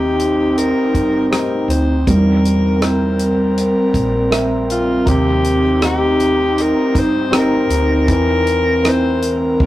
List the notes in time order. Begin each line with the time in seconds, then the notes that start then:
Already playing: D#2 C3 C4 D#4 G4
0.20 closed hi-hat
0.57 A#4, closed hi-hat
0.94 G2, kick, closed hi-hat
1.31 C4 D#4 G4 A#4, cross-stick, closed hi-hat
1.68 D2 C5, closed hi-hat
2.07 E2 G3 C4 A#4, kick, closed hi-hat
2.45 closed hi-hat
2.81 C4 E4 A#4 C5, cross-stick, closed hi-hat
3.19 closed hi-hat
3.58 closed hi-hat
3.94 A#1, kick, closed hi-hat
4.31 C4 A#4 E5, cross-stick, closed hi-hat
4.70 F4, closed hi-hat
5.05 D#2 C3 D#4 G4, kick, closed hi-hat
5.45 closed hi-hat
5.81 C4 D#4 G4, cross-stick, closed hi-hat
6.20 closed hi-hat
6.58 A#4, closed hi-hat
6.95 G2 C5, kick, closed hi-hat
7.31 C4 D#4 G4, cross-stick, closed hi-hat
7.36 A#4
7.70 D2, closed hi-hat
8.07 E2 E3 A#4, kick, closed hi-hat
8.12 A#4
8.47 closed hi-hat
8.83 C4 E4 A#4, cross-stick, closed hi-hat
8.89 C5
9.23 closed hi-hat
9.60 E2, kick, high tom